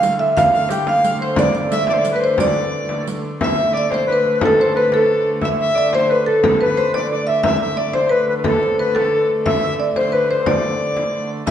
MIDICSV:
0, 0, Header, 1, 7, 480
1, 0, Start_track
1, 0, Tempo, 336511
1, 518, Time_signature, 6, 3, 24, 8
1, 16414, End_track
2, 0, Start_track
2, 0, Title_t, "Harp"
2, 0, Program_c, 0, 46
2, 0, Note_on_c, 0, 72, 81
2, 0, Note_on_c, 0, 74, 79
2, 0, Note_on_c, 0, 77, 80
2, 0, Note_on_c, 0, 79, 84
2, 293, Note_on_c, 0, 76, 77
2, 378, Note_off_c, 0, 77, 0
2, 535, Note_on_c, 0, 77, 93
2, 620, Note_off_c, 0, 76, 0
2, 1006, Note_off_c, 0, 79, 0
2, 1011, Note_on_c, 0, 79, 75
2, 1174, Note_off_c, 0, 72, 0
2, 1219, Note_off_c, 0, 74, 0
2, 1239, Note_off_c, 0, 77, 0
2, 1244, Note_on_c, 0, 77, 83
2, 1742, Note_on_c, 0, 72, 73
2, 1984, Note_on_c, 0, 74, 88
2, 2227, Note_off_c, 0, 74, 0
2, 2233, Note_on_c, 0, 74, 75
2, 2472, Note_on_c, 0, 76, 82
2, 2558, Note_off_c, 0, 77, 0
2, 2703, Note_off_c, 0, 74, 0
2, 2708, Note_on_c, 0, 74, 81
2, 3067, Note_on_c, 0, 71, 78
2, 3152, Note_off_c, 0, 72, 0
2, 3227, Note_off_c, 0, 79, 0
2, 3429, Note_off_c, 0, 74, 0
2, 3435, Note_on_c, 0, 74, 81
2, 4860, Note_off_c, 0, 76, 0
2, 4866, Note_on_c, 0, 76, 85
2, 5334, Note_off_c, 0, 74, 0
2, 5339, Note_on_c, 0, 74, 86
2, 5576, Note_on_c, 0, 72, 79
2, 5661, Note_off_c, 0, 71, 0
2, 5844, Note_on_c, 0, 71, 69
2, 5930, Note_off_c, 0, 72, 0
2, 6072, Note_off_c, 0, 71, 0
2, 6078, Note_on_c, 0, 71, 72
2, 6321, Note_on_c, 0, 69, 91
2, 6548, Note_on_c, 0, 72, 76
2, 6633, Note_off_c, 0, 71, 0
2, 6795, Note_on_c, 0, 71, 81
2, 6881, Note_off_c, 0, 72, 0
2, 7026, Note_off_c, 0, 69, 0
2, 7031, Note_on_c, 0, 69, 70
2, 7324, Note_off_c, 0, 76, 0
2, 7729, Note_on_c, 0, 76, 91
2, 7973, Note_off_c, 0, 74, 0
2, 8200, Note_on_c, 0, 74, 82
2, 8448, Note_on_c, 0, 72, 83
2, 8533, Note_off_c, 0, 71, 0
2, 8701, Note_on_c, 0, 71, 77
2, 8786, Note_off_c, 0, 72, 0
2, 8944, Note_off_c, 0, 69, 0
2, 8950, Note_on_c, 0, 69, 74
2, 9187, Note_off_c, 0, 69, 0
2, 9193, Note_on_c, 0, 69, 76
2, 9427, Note_off_c, 0, 71, 0
2, 9433, Note_on_c, 0, 71, 71
2, 9664, Note_on_c, 0, 72, 72
2, 9749, Note_off_c, 0, 71, 0
2, 9912, Note_off_c, 0, 74, 0
2, 9917, Note_on_c, 0, 74, 80
2, 10155, Note_off_c, 0, 74, 0
2, 10161, Note_on_c, 0, 74, 74
2, 10187, Note_off_c, 0, 76, 0
2, 10396, Note_on_c, 0, 76, 71
2, 10625, Note_off_c, 0, 76, 0
2, 10631, Note_on_c, 0, 76, 83
2, 11091, Note_off_c, 0, 74, 0
2, 11096, Note_on_c, 0, 74, 72
2, 11312, Note_off_c, 0, 72, 0
2, 11318, Note_on_c, 0, 72, 77
2, 11564, Note_on_c, 0, 71, 71
2, 11649, Note_off_c, 0, 72, 0
2, 11963, Note_off_c, 0, 71, 0
2, 11969, Note_on_c, 0, 71, 54
2, 12059, Note_off_c, 0, 69, 0
2, 12065, Note_on_c, 0, 69, 77
2, 12540, Note_off_c, 0, 71, 0
2, 12546, Note_on_c, 0, 71, 74
2, 12780, Note_off_c, 0, 69, 0
2, 12786, Note_on_c, 0, 69, 76
2, 13089, Note_off_c, 0, 76, 0
2, 13502, Note_on_c, 0, 76, 94
2, 13730, Note_off_c, 0, 74, 0
2, 13743, Note_off_c, 0, 76, 0
2, 13748, Note_on_c, 0, 76, 82
2, 14208, Note_on_c, 0, 72, 68
2, 14294, Note_off_c, 0, 71, 0
2, 14440, Note_on_c, 0, 71, 65
2, 14525, Note_off_c, 0, 72, 0
2, 14701, Note_on_c, 0, 72, 74
2, 14787, Note_off_c, 0, 71, 0
2, 14937, Note_on_c, 0, 74, 73
2, 15918, Note_off_c, 0, 69, 0
2, 16206, Note_off_c, 0, 76, 0
2, 16350, Note_on_c, 0, 76, 93
2, 16414, Note_off_c, 0, 72, 0
2, 16414, Note_off_c, 0, 74, 0
2, 16414, Note_off_c, 0, 76, 0
2, 16414, End_track
3, 0, Start_track
3, 0, Title_t, "Marimba"
3, 0, Program_c, 1, 12
3, 0, Note_on_c, 1, 77, 90
3, 253, Note_off_c, 1, 77, 0
3, 277, Note_on_c, 1, 76, 89
3, 502, Note_off_c, 1, 76, 0
3, 524, Note_on_c, 1, 77, 95
3, 1018, Note_off_c, 1, 77, 0
3, 1026, Note_on_c, 1, 79, 95
3, 1239, Note_off_c, 1, 79, 0
3, 1272, Note_on_c, 1, 77, 83
3, 1707, Note_off_c, 1, 77, 0
3, 1744, Note_on_c, 1, 72, 84
3, 1848, Note_off_c, 1, 72, 0
3, 1983, Note_on_c, 1, 74, 89
3, 2471, Note_off_c, 1, 74, 0
3, 2479, Note_on_c, 1, 76, 91
3, 2688, Note_off_c, 1, 76, 0
3, 2724, Note_on_c, 1, 74, 76
3, 3078, Note_off_c, 1, 74, 0
3, 3080, Note_on_c, 1, 71, 74
3, 3189, Note_off_c, 1, 71, 0
3, 3192, Note_on_c, 1, 72, 83
3, 3295, Note_off_c, 1, 72, 0
3, 3435, Note_on_c, 1, 74, 82
3, 4329, Note_off_c, 1, 74, 0
3, 4912, Note_on_c, 1, 76, 93
3, 5333, Note_off_c, 1, 76, 0
3, 5380, Note_on_c, 1, 74, 89
3, 5605, Note_off_c, 1, 74, 0
3, 5622, Note_on_c, 1, 72, 85
3, 5825, Note_off_c, 1, 72, 0
3, 5884, Note_on_c, 1, 71, 87
3, 6300, Note_off_c, 1, 71, 0
3, 6355, Note_on_c, 1, 69, 80
3, 6552, Note_off_c, 1, 69, 0
3, 6578, Note_on_c, 1, 72, 83
3, 6783, Note_off_c, 1, 72, 0
3, 6803, Note_on_c, 1, 71, 87
3, 7038, Note_off_c, 1, 71, 0
3, 7041, Note_on_c, 1, 69, 86
3, 7534, Note_off_c, 1, 69, 0
3, 7778, Note_on_c, 1, 76, 93
3, 8242, Note_on_c, 1, 74, 91
3, 8253, Note_off_c, 1, 76, 0
3, 8478, Note_off_c, 1, 74, 0
3, 8481, Note_on_c, 1, 72, 85
3, 8715, Note_on_c, 1, 71, 68
3, 8717, Note_off_c, 1, 72, 0
3, 8931, Note_off_c, 1, 71, 0
3, 8935, Note_on_c, 1, 69, 85
3, 9160, Note_off_c, 1, 69, 0
3, 9196, Note_on_c, 1, 69, 74
3, 9411, Note_off_c, 1, 69, 0
3, 9424, Note_on_c, 1, 71, 74
3, 9645, Note_off_c, 1, 71, 0
3, 9662, Note_on_c, 1, 72, 82
3, 9903, Note_on_c, 1, 74, 85
3, 9907, Note_off_c, 1, 72, 0
3, 10366, Note_on_c, 1, 76, 86
3, 10394, Note_off_c, 1, 74, 0
3, 10586, Note_off_c, 1, 76, 0
3, 10603, Note_on_c, 1, 76, 85
3, 11085, Note_on_c, 1, 74, 82
3, 11104, Note_off_c, 1, 76, 0
3, 11319, Note_on_c, 1, 72, 81
3, 11337, Note_off_c, 1, 74, 0
3, 11546, Note_on_c, 1, 71, 69
3, 11549, Note_off_c, 1, 72, 0
3, 12051, Note_on_c, 1, 69, 83
3, 12054, Note_off_c, 1, 71, 0
3, 12299, Note_off_c, 1, 69, 0
3, 12308, Note_on_c, 1, 72, 69
3, 12523, Note_off_c, 1, 72, 0
3, 12543, Note_on_c, 1, 71, 83
3, 12761, Note_off_c, 1, 71, 0
3, 12764, Note_on_c, 1, 69, 80
3, 13268, Note_off_c, 1, 69, 0
3, 13490, Note_on_c, 1, 76, 89
3, 13974, Note_on_c, 1, 74, 87
3, 13981, Note_off_c, 1, 76, 0
3, 14214, Note_on_c, 1, 72, 83
3, 14216, Note_off_c, 1, 74, 0
3, 14432, Note_off_c, 1, 72, 0
3, 14437, Note_on_c, 1, 71, 78
3, 14663, Note_off_c, 1, 71, 0
3, 14700, Note_on_c, 1, 72, 80
3, 14928, Note_on_c, 1, 74, 76
3, 14937, Note_off_c, 1, 72, 0
3, 16061, Note_off_c, 1, 74, 0
3, 16368, Note_on_c, 1, 76, 110
3, 16414, Note_off_c, 1, 76, 0
3, 16414, End_track
4, 0, Start_track
4, 0, Title_t, "Recorder"
4, 0, Program_c, 2, 74
4, 0, Note_on_c, 2, 77, 90
4, 187, Note_off_c, 2, 77, 0
4, 517, Note_on_c, 2, 77, 84
4, 603, Note_off_c, 2, 77, 0
4, 759, Note_on_c, 2, 77, 92
4, 992, Note_on_c, 2, 67, 83
4, 1013, Note_off_c, 2, 77, 0
4, 1244, Note_on_c, 2, 77, 83
4, 1266, Note_off_c, 2, 67, 0
4, 1710, Note_off_c, 2, 77, 0
4, 1719, Note_on_c, 2, 72, 70
4, 1946, Note_on_c, 2, 74, 75
4, 1967, Note_off_c, 2, 72, 0
4, 2197, Note_off_c, 2, 74, 0
4, 2432, Note_on_c, 2, 76, 86
4, 2663, Note_off_c, 2, 76, 0
4, 2680, Note_on_c, 2, 74, 91
4, 2757, Note_on_c, 2, 72, 65
4, 2779, Note_off_c, 2, 74, 0
4, 2832, Note_on_c, 2, 74, 81
4, 2853, Note_off_c, 2, 72, 0
4, 3006, Note_off_c, 2, 74, 0
4, 3015, Note_on_c, 2, 71, 65
4, 3138, Note_on_c, 2, 72, 66
4, 3159, Note_off_c, 2, 71, 0
4, 3404, Note_on_c, 2, 74, 67
4, 3426, Note_off_c, 2, 72, 0
4, 4371, Note_off_c, 2, 74, 0
4, 4862, Note_on_c, 2, 76, 84
4, 5327, Note_on_c, 2, 74, 80
4, 5349, Note_off_c, 2, 76, 0
4, 5569, Note_on_c, 2, 72, 88
4, 5590, Note_off_c, 2, 74, 0
4, 5794, Note_off_c, 2, 72, 0
4, 5803, Note_on_c, 2, 71, 77
4, 6199, Note_off_c, 2, 71, 0
4, 6199, Note_on_c, 2, 71, 57
4, 6297, Note_on_c, 2, 69, 75
4, 6319, Note_off_c, 2, 71, 0
4, 6788, Note_on_c, 2, 71, 77
4, 6810, Note_off_c, 2, 69, 0
4, 7032, Note_on_c, 2, 69, 79
4, 7054, Note_off_c, 2, 71, 0
4, 7566, Note_off_c, 2, 69, 0
4, 7738, Note_on_c, 2, 76, 77
4, 7824, Note_off_c, 2, 76, 0
4, 7994, Note_on_c, 2, 76, 101
4, 8482, Note_on_c, 2, 72, 85
4, 8504, Note_off_c, 2, 76, 0
4, 8697, Note_on_c, 2, 71, 77
4, 8719, Note_off_c, 2, 72, 0
4, 8938, Note_off_c, 2, 71, 0
4, 8945, Note_on_c, 2, 69, 62
4, 9165, Note_off_c, 2, 69, 0
4, 9207, Note_on_c, 2, 69, 69
4, 9417, Note_off_c, 2, 69, 0
4, 9438, Note_on_c, 2, 71, 94
4, 9875, Note_off_c, 2, 71, 0
4, 9911, Note_on_c, 2, 74, 80
4, 10128, Note_off_c, 2, 74, 0
4, 10150, Note_on_c, 2, 74, 72
4, 10386, Note_on_c, 2, 76, 73
4, 10407, Note_off_c, 2, 74, 0
4, 10607, Note_off_c, 2, 76, 0
4, 10616, Note_on_c, 2, 76, 72
4, 10839, Note_off_c, 2, 76, 0
4, 10846, Note_on_c, 2, 76, 81
4, 11097, Note_on_c, 2, 74, 72
4, 11118, Note_off_c, 2, 76, 0
4, 11336, Note_on_c, 2, 72, 73
4, 11358, Note_off_c, 2, 74, 0
4, 11568, Note_on_c, 2, 71, 73
4, 11590, Note_off_c, 2, 72, 0
4, 11807, Note_off_c, 2, 71, 0
4, 11815, Note_on_c, 2, 71, 57
4, 11901, Note_off_c, 2, 71, 0
4, 12077, Note_on_c, 2, 69, 68
4, 12511, Note_off_c, 2, 69, 0
4, 12544, Note_on_c, 2, 71, 60
4, 12761, Note_off_c, 2, 71, 0
4, 12790, Note_on_c, 2, 69, 71
4, 13282, Note_off_c, 2, 69, 0
4, 13500, Note_on_c, 2, 76, 82
4, 13898, Note_off_c, 2, 76, 0
4, 14223, Note_on_c, 2, 72, 77
4, 14450, Note_on_c, 2, 71, 70
4, 14471, Note_off_c, 2, 72, 0
4, 14686, Note_on_c, 2, 72, 67
4, 14707, Note_off_c, 2, 71, 0
4, 14941, Note_on_c, 2, 74, 70
4, 14963, Note_off_c, 2, 72, 0
4, 16125, Note_off_c, 2, 74, 0
4, 16363, Note_on_c, 2, 76, 92
4, 16414, Note_off_c, 2, 76, 0
4, 16414, End_track
5, 0, Start_track
5, 0, Title_t, "Hurdy-gurdy"
5, 0, Program_c, 3, 110
5, 0, Note_on_c, 3, 50, 62
5, 0, Note_on_c, 3, 57, 64
5, 4841, Note_off_c, 3, 57, 0
5, 4841, Note_on_c, 3, 57, 62
5, 4860, Note_off_c, 3, 50, 0
5, 4860, Note_on_c, 3, 50, 62
5, 10624, Note_off_c, 3, 50, 0
5, 10624, Note_on_c, 3, 50, 67
5, 10630, Note_off_c, 3, 57, 0
5, 10630, Note_on_c, 3, 57, 68
5, 16358, Note_off_c, 3, 50, 0
5, 16358, Note_on_c, 3, 50, 64
5, 16369, Note_off_c, 3, 57, 0
5, 16369, Note_on_c, 3, 57, 69
5, 16414, Note_off_c, 3, 50, 0
5, 16414, Note_off_c, 3, 57, 0
5, 16414, End_track
6, 0, Start_track
6, 0, Title_t, "Frame drum"
6, 43, Note_on_c, 9, 64, 29
6, 186, Note_off_c, 9, 64, 0
6, 531, Note_on_c, 9, 64, 94
6, 674, Note_off_c, 9, 64, 0
6, 1000, Note_on_c, 9, 64, 30
6, 1143, Note_off_c, 9, 64, 0
6, 1240, Note_on_c, 9, 64, 67
6, 1382, Note_off_c, 9, 64, 0
6, 1487, Note_on_c, 9, 64, 28
6, 1630, Note_off_c, 9, 64, 0
6, 1946, Note_on_c, 9, 64, 103
6, 2088, Note_off_c, 9, 64, 0
6, 2448, Note_on_c, 9, 64, 30
6, 2591, Note_off_c, 9, 64, 0
6, 2667, Note_on_c, 9, 64, 71
6, 2809, Note_off_c, 9, 64, 0
6, 2907, Note_on_c, 9, 64, 27
6, 3049, Note_off_c, 9, 64, 0
6, 3391, Note_on_c, 9, 64, 93
6, 3534, Note_off_c, 9, 64, 0
6, 3875, Note_on_c, 9, 64, 25
6, 4018, Note_off_c, 9, 64, 0
6, 4124, Note_on_c, 9, 64, 61
6, 4267, Note_off_c, 9, 64, 0
6, 4626, Note_on_c, 9, 64, 27
6, 4768, Note_off_c, 9, 64, 0
6, 4861, Note_on_c, 9, 64, 88
6, 5004, Note_off_c, 9, 64, 0
6, 5342, Note_on_c, 9, 64, 28
6, 5485, Note_off_c, 9, 64, 0
6, 5587, Note_on_c, 9, 64, 66
6, 5730, Note_off_c, 9, 64, 0
6, 5821, Note_on_c, 9, 64, 29
6, 5963, Note_off_c, 9, 64, 0
6, 6063, Note_on_c, 9, 64, 30
6, 6206, Note_off_c, 9, 64, 0
6, 6294, Note_on_c, 9, 64, 100
6, 6437, Note_off_c, 9, 64, 0
6, 6775, Note_on_c, 9, 64, 26
6, 6917, Note_off_c, 9, 64, 0
6, 7018, Note_on_c, 9, 64, 68
6, 7161, Note_off_c, 9, 64, 0
6, 7266, Note_on_c, 9, 64, 27
6, 7409, Note_off_c, 9, 64, 0
6, 7488, Note_on_c, 9, 64, 26
6, 7631, Note_off_c, 9, 64, 0
6, 7723, Note_on_c, 9, 64, 73
6, 7865, Note_off_c, 9, 64, 0
6, 8216, Note_on_c, 9, 64, 27
6, 8359, Note_off_c, 9, 64, 0
6, 8458, Note_on_c, 9, 64, 65
6, 8600, Note_off_c, 9, 64, 0
6, 8709, Note_on_c, 9, 64, 25
6, 8851, Note_off_c, 9, 64, 0
6, 9180, Note_on_c, 9, 64, 97
6, 9323, Note_off_c, 9, 64, 0
6, 9669, Note_on_c, 9, 64, 28
6, 9812, Note_off_c, 9, 64, 0
6, 9900, Note_on_c, 9, 64, 70
6, 10043, Note_off_c, 9, 64, 0
6, 10606, Note_on_c, 9, 64, 91
6, 10748, Note_off_c, 9, 64, 0
6, 11084, Note_on_c, 9, 64, 27
6, 11226, Note_off_c, 9, 64, 0
6, 11317, Note_on_c, 9, 64, 69
6, 11460, Note_off_c, 9, 64, 0
6, 11565, Note_on_c, 9, 64, 26
6, 11708, Note_off_c, 9, 64, 0
6, 11811, Note_on_c, 9, 64, 30
6, 11953, Note_off_c, 9, 64, 0
6, 12041, Note_on_c, 9, 64, 89
6, 12184, Note_off_c, 9, 64, 0
6, 12523, Note_on_c, 9, 64, 28
6, 12666, Note_off_c, 9, 64, 0
6, 12779, Note_on_c, 9, 64, 67
6, 12921, Note_off_c, 9, 64, 0
6, 13001, Note_on_c, 9, 64, 27
6, 13143, Note_off_c, 9, 64, 0
6, 13253, Note_on_c, 9, 64, 31
6, 13396, Note_off_c, 9, 64, 0
6, 13493, Note_on_c, 9, 64, 94
6, 13636, Note_off_c, 9, 64, 0
6, 13978, Note_on_c, 9, 64, 27
6, 14120, Note_off_c, 9, 64, 0
6, 14209, Note_on_c, 9, 64, 68
6, 14352, Note_off_c, 9, 64, 0
6, 14448, Note_on_c, 9, 64, 29
6, 14590, Note_off_c, 9, 64, 0
6, 14704, Note_on_c, 9, 64, 29
6, 14847, Note_off_c, 9, 64, 0
6, 14925, Note_on_c, 9, 64, 91
6, 15067, Note_off_c, 9, 64, 0
6, 15167, Note_on_c, 9, 64, 25
6, 15310, Note_off_c, 9, 64, 0
6, 15426, Note_on_c, 9, 64, 24
6, 15568, Note_off_c, 9, 64, 0
6, 15643, Note_on_c, 9, 64, 69
6, 15785, Note_off_c, 9, 64, 0
6, 15888, Note_on_c, 9, 64, 25
6, 16030, Note_off_c, 9, 64, 0
6, 16363, Note_on_c, 9, 64, 90
6, 16414, Note_off_c, 9, 64, 0
6, 16414, End_track
7, 0, Start_track
7, 0, Title_t, "Riq"
7, 45, Note_on_c, 9, 54, 71
7, 187, Note_off_c, 9, 54, 0
7, 536, Note_on_c, 9, 54, 53
7, 678, Note_off_c, 9, 54, 0
7, 779, Note_on_c, 9, 54, 20
7, 921, Note_off_c, 9, 54, 0
7, 1005, Note_on_c, 9, 54, 62
7, 1148, Note_off_c, 9, 54, 0
7, 1489, Note_on_c, 9, 54, 63
7, 1632, Note_off_c, 9, 54, 0
7, 1975, Note_on_c, 9, 54, 59
7, 2118, Note_off_c, 9, 54, 0
7, 2202, Note_on_c, 9, 54, 21
7, 2345, Note_off_c, 9, 54, 0
7, 2449, Note_on_c, 9, 54, 70
7, 2591, Note_off_c, 9, 54, 0
7, 2919, Note_on_c, 9, 54, 62
7, 3062, Note_off_c, 9, 54, 0
7, 3422, Note_on_c, 9, 54, 64
7, 3565, Note_off_c, 9, 54, 0
7, 4385, Note_on_c, 9, 54, 61
7, 4528, Note_off_c, 9, 54, 0
7, 16359, Note_on_c, 9, 54, 59
7, 16414, Note_off_c, 9, 54, 0
7, 16414, End_track
0, 0, End_of_file